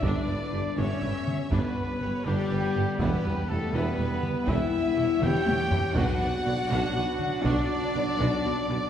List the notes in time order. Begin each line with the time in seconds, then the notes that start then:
0.02 G1 G2 G3 B3 D4 B4 D5, taiko
0.27 G1 G2 B4
0.52 G1 G2 G4
0.76 G1 G2 C#4 D4 C#5 E5
1.02 G1 G2 B4
1.27 taiko mid
1.51 G1 G2 B3 D4 B4 D5, taiko
1.77 B4
2.01 G1 G2 G4 C#5
2.25 G1 G2 G3 D4 G4 D5
2.50 G1 G2 B4
2.75 G1 G2 G4 A4
2.98 E1 E2 B3 E4 G4 B4, taiko
3.25 E1 E2 G4 B4
3.48 E1 E2 A3 E4 G4 A4
3.72 E1 E2 B3 E4 B4
3.98 E1 E2 G4 B4
4.23 taiko mid
4.47 E1 E2 B3 E4 A4 E5, taiko
4.73 B4
4.96 E1 E2 E4 G4 C#5
5.21 E1 E2 B3 E4 G4 G5, taiko mid
5.46 E1 E2 G4 B4, taiko high
5.71 E1 E2 E4 G4, taiko low
5.93 B1 B2 F#3 D4 F#4 B4 F#5, taiko
6.20 B1 B2 B4 D5
6.45 B1 B2 F#4 B4 D5
6.69 B1 B2 D4 F#4 C#5
6.95 B1 B2 B4 D5
7.19 D5, taiko mid
7.42 B1 B2 D4 F#4 D5, taiko
7.94 B1 B2 F#4 B4
8.18 B1 B2 D4 F#4
8.44 B1 B2 B4 D5
8.68 B1 B2 F#4 B4